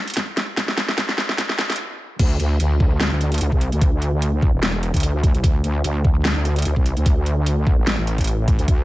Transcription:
0.07 closed hi-hat medium
0.10 closed hi-hat medium
0.14 kick loud
0.14 snare medium
0.14 closed hi-hat medium
0.17 closed hi-hat medium
0.37 snare medium
0.37 closed hi-hat medium
0.57 kick medium
0.57 snare medium
0.57 closed hi-hat medium
0.68 snare medium
0.77 snare medium
0.77 closed hi-hat medium
0.89 snare medium
0.98 kick loud
0.98 snare loud
0.98 closed hi-hat medium
1.09 snare medium
1.18 snare medium
1.29 snare medium
1.38 kick loud
1.38 snare loud
1.38 closed hi-hat medium
1.49 snare medium
1.59 snare loud
1.59 closed hi-hat medium
1.70 snare loud
1.70 closed hi-hat soft
1.72 closed hi-hat medium
1.76 closed hi-hat medium
2.19 2.38 D2 medium
2.19 kick loud
2.19 closed hi-hat medium
2.19 crash loud
2.40 2.58 D2 medium
2.40 closed hi-hat medium
2.60 2.79 D2 medium
2.60 closed hi-hat medium
2.80 3.10 D2 loud
2.80 kick loud
3.00 snare loud
3.00 closed hi-hat medium
3.11 3.40 D2 loud
3.21 closed hi-hat medium
3.32 closed hi-hat medium
3.34 closed hi-hat medium
3.38 closed hi-hat medium
3.41 3.50 D2 loud
3.41 closed hi-hat medium
3.52 3.71 C2 loud
3.52 kick medium
3.61 closed hi-hat medium
3.72 4.52 D2 medium
3.72 closed hi-hat soft
3.81 kick loud
3.81 closed hi-hat medium
4.02 closed hi-hat medium
4.22 closed hi-hat medium
4.42 kick loud
4.53 4.92 E1 loud
4.63 snare loud
4.63 closed hi-hat medium
4.83 closed hi-hat medium
4.94 5.33 D2 loud
4.94 kick medium
4.94 closed hi-hat medium
4.96 closed hi-hat medium
5.00 closed hi-hat medium
5.03 closed hi-hat medium
5.23 kick loud
5.23 closed hi-hat medium
5.34 5.42 C2 medium
5.34 closed hi-hat soft
5.44 5.62 D2 medium
5.44 kick loud
5.44 closed hi-hat medium
5.64 5.83 D2 loud
5.64 closed hi-hat medium
5.84 6.03 D2 loud
5.84 closed hi-hat medium
6.04 6.34 D2 medium
6.04 kick loud
6.25 snare loud
6.25 closed hi-hat medium
6.36 6.64 D2 loud
6.45 closed hi-hat medium
6.56 closed hi-hat soft
6.59 closed hi-hat medium
6.62 6.75 D2 medium
6.62 closed hi-hat medium
6.65 closed hi-hat medium
6.76 6.95 C2 loud
6.76 kick medium
6.86 closed hi-hat medium
6.97 7.76 D2 medium
6.97 closed hi-hat soft
7.06 kick loud
7.06 closed hi-hat medium
7.26 closed hi-hat medium
7.46 closed hi-hat medium
7.67 kick loud
7.78 7.96 A1 loud
7.87 snare loud
7.87 closed hi-hat medium
7.98 8.57 A1 loud
8.07 closed hi-hat medium
8.18 kick medium
8.18 closed hi-hat soft
8.21 closed hi-hat medium
8.24 closed hi-hat medium
8.27 closed hi-hat medium
8.48 kick loud
8.48 closed hi-hat medium
8.59 8.67 D2 loud
8.59 closed hi-hat soft
8.68 8.84 D2 medium
8.68 kick loud
8.68 closed hi-hat medium

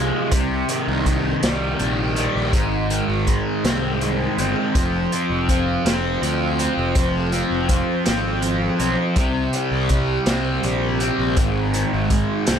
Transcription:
0.00 0.10 C2 medium
0.00 2.33 F2 medium
0.00 0.32 C3 medium
0.00 0.32 F3 medium
0.00 0.32 G#3 medium
0.31 0.63 C2 loud
0.31 2.17 C3 medium
0.31 kick medium
0.31 closed hi-hat medium
0.69 1.05 D#3 medium
0.69 closed hi-hat medium
0.88 1.34 C2 medium
1.06 1.79 D#3 medium
1.06 kick medium
1.06 closed hi-hat medium
1.43 1.74 C2 medium
1.43 2.16 G3 medium
1.43 snare loud
1.43 closed hi-hat medium
1.79 2.26 A#1 medium
1.79 2.54 D#3 medium
1.79 closed hi-hat medium
2.16 2.53 G3 medium
2.16 closed hi-hat soft
2.36 2.51 A#1 medium
2.53 3.00 G#1 medium
2.53 4.38 G#2 medium
2.53 kick loud
2.53 closed hi-hat medium
2.90 4.74 D#3 medium
2.90 closed hi-hat medium
3.08 3.39 G#1 medium
3.27 4.02 G#3 medium
3.27 kick medium
3.27 closed hi-hat soft
3.64 4.26 C2 medium
3.64 4.38 C4 medium
3.64 snare loud
3.64 closed hi-hat medium
4.01 4.75 G#3 medium
4.01 closed hi-hat medium
4.38 4.53 G1 medium
4.38 5.13 C4 medium
4.38 closed hi-hat medium
4.75 5.06 F1 medium
4.75 5.49 F3 medium
4.75 kick medium
4.75 closed hi-hat medium
5.12 5.86 C4 medium
5.12 closed hi-hat medium
5.30 5.76 F1 medium
5.49 6.22 F3 medium
5.49 kick medium
5.49 closed hi-hat medium
5.85 6.16 F1 medium
5.85 6.59 C4 medium
5.85 snare loud
5.85 closed hi-hat medium
6.22 6.68 D2 medium
6.22 6.95 F3 medium
6.22 closed hi-hat medium
6.59 7.33 C4 medium
6.59 closed hi-hat medium
6.77 6.93 F1 medium
6.95 7.42 F1 loud
6.95 7.69 F3 medium
6.95 kick loud
6.95 closed hi-hat medium
7.32 8.05 C4 medium
7.32 closed hi-hat medium
7.50 7.81 F1 medium
7.69 8.41 F3 medium
7.69 kick medium
7.69 closed hi-hat medium
8.06 8.68 G#1 medium
8.06 8.79 C4 medium
8.06 snare loud
8.06 closed hi-hat medium
8.42 9.16 F3 medium
8.42 closed hi-hat medium
8.79 8.95 B1 medium
8.79 10.27 C4 medium
8.79 closed hi-hat medium
9.16 9.47 C2 loud
9.16 11.00 C3 medium
9.16 kick loud
9.16 closed hi-hat medium
9.53 9.90 G3 medium
9.53 closed hi-hat medium
9.71 10.18 C2 medium
9.89 10.63 G3 medium
9.89 kick medium
9.89 closed hi-hat medium
10.26 10.57 C2 medium
10.26 11.00 C4 medium
10.26 snare loud
10.26 closed hi-hat medium
10.63 11.09 A#1 medium
10.63 11.37 G3 medium
10.63 closed hi-hat medium
11.00 12.47 C4 medium
11.00 closed hi-hat medium
11.19 11.34 A#1 medium
11.37 11.83 G#1 loud
11.37 12.59 G#2 medium
11.37 kick loud
11.37 closed hi-hat medium
11.74 12.59 D#3 medium
11.74 closed hi-hat medium
11.93 12.23 G#1 medium
12.10 12.59 G#3 medium
12.10 kick medium
12.10 closed hi-hat medium
12.47 12.59 C2 medium
12.47 12.59 C4 medium
12.47 snare loud
12.47 closed hi-hat medium

